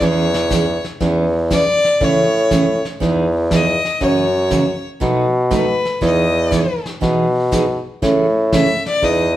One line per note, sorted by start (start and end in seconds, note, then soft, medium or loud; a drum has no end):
0.00 0.81 E2 loud
0.00 0.24 E3 medium
0.00 0.25 B3 medium
0.00 0.24 C#4 medium
0.00 0.25 G#4 medium
0.00 0.86 C#5 medium
0.00 brush sweep medium
0.00 kick soft
0.00 snare soft
0.34 snare medium
0.50 0.63 E3 medium
0.50 0.63 B3 medium
0.50 0.63 C#4 medium
0.50 0.64 G#4 medium
0.50 kick soft
0.50 snare medium
0.50 hi-hat pedal medium
0.84 snare soft
1.00 1.66 E2 loud
1.00 1.24 E3 medium
1.00 1.24 B3 medium
1.00 1.24 C#4 medium
1.00 1.24 G#4 medium
1.00 brush sweep soft
1.00 kick soft
1.00 snare soft
1.50 1.63 E3 medium
1.50 1.63 B3 medium
1.50 1.64 C#4 medium
1.50 1.64 G#4 medium
1.50 2.05 D5 loud
1.50 kick soft
1.50 snare medium
1.50 hi-hat pedal medium
1.85 snare soft
2.00 2.81 A2 loud
2.00 2.24 C#3 medium
2.00 2.24 E3 medium
2.00 2.24 A3 medium
2.00 2.24 C#4 medium
2.00 2.24 G#4 medium
2.00 2.86 C#5 medium
2.00 brush sweep soft
2.00 kick soft
2.00 snare soft
2.51 2.63 C#3 medium
2.51 2.63 E3 medium
2.51 2.64 A3 medium
2.51 2.64 C#4 medium
2.51 2.64 G#4 medium
2.51 kick soft
2.51 snare medium
2.51 hi-hat pedal medium
2.85 snare soft
3.00 3.81 E2 loud
3.00 3.24 E3 medium
3.00 3.24 B3 medium
3.00 3.24 D#4 medium
3.00 3.24 G#4 medium
3.00 brush sweep soft
3.00 kick soft
3.00 snare soft
3.51 3.64 E3 medium
3.51 3.64 B3 medium
3.51 3.64 D#4 medium
3.51 3.64 G#4 medium
3.51 4.05 D#5 medium
3.51 kick soft
3.51 snare medium
3.51 hi-hat pedal medium
3.85 snare soft
4.00 4.81 F#2 loud
4.00 4.24 C#3 medium
4.00 4.24 E3 medium
4.00 4.24 A#3 medium
4.00 4.24 C#4 medium
4.00 4.25 F#4 medium
4.00 4.86 C#5 medium
4.00 brush sweep medium
4.00 kick soft
4.00 snare soft
4.50 4.63 C#3 medium
4.50 4.63 E3 medium
4.50 4.64 A#3 medium
4.50 4.64 C#4 medium
4.50 4.64 F#4 medium
4.50 kick soft
4.50 snare medium
4.50 hi-hat pedal medium
5.00 5.24 B2 medium
5.00 5.81 B2 loud
5.00 5.24 F#3 medium
5.00 5.24 A3 medium
5.00 5.24 D#4 medium
5.00 5.25 F#4 medium
5.00 brush sweep soft
5.00 kick soft
5.00 snare soft
5.51 5.63 B2 medium
5.51 5.63 F#3 medium
5.51 5.64 A3 medium
5.51 5.64 D#4 medium
5.51 5.64 F#4 medium
5.51 6.00 B4 medium
5.51 kick soft
5.51 snare medium
5.51 hi-hat pedal medium
5.85 snare soft
6.01 6.67 E2 loud
6.01 6.24 E3 medium
6.01 6.24 B3 medium
6.01 6.25 D#4 medium
6.01 6.25 G#4 medium
6.01 6.83 D#5 medium
6.01 brush sweep medium
6.01 kick soft
6.01 snare soft
6.51 6.64 E3 medium
6.51 6.64 B3 medium
6.51 6.64 D#4 medium
6.51 6.64 G#4 medium
6.51 kick soft
6.51 snare medium
6.51 hi-hat pedal medium
6.86 snare soft
7.01 7.82 B2 medium
7.01 7.24 E3 medium
7.01 7.25 B3 medium
7.01 7.25 D#4 medium
7.01 7.25 G#4 medium
7.01 brush sweep medium
7.01 kick soft
7.01 snare soft
7.52 7.64 E3 medium
7.52 7.64 B3 medium
7.52 7.64 D#4 medium
7.52 7.64 G#4 medium
7.52 kick soft
7.52 snare medium
7.52 hi-hat pedal medium
8.02 8.82 A2 loud
8.02 8.25 C#3 medium
8.02 8.25 E3 medium
8.02 8.25 A3 medium
8.02 8.26 C#4 medium
8.02 8.26 G#4 medium
8.02 brush sweep medium
8.02 kick soft
8.02 snare medium
8.52 8.65 C#3 medium
8.52 8.65 E3 medium
8.52 8.65 A3 medium
8.52 8.65 C#4 medium
8.52 8.65 G#4 medium
8.52 8.85 E5 medium
8.52 kick soft
8.52 snare medium
8.52 hi-hat pedal soft
8.86 9.06 D5 loud
8.86 snare soft
9.01 9.37 E2 loud
9.01 9.25 E3 medium
9.01 9.25 B3 medium
9.01 9.25 D#4 medium
9.01 9.25 G#4 medium
9.01 9.37 D#5 medium
9.01 brush sweep medium
9.01 kick soft
9.01 snare soft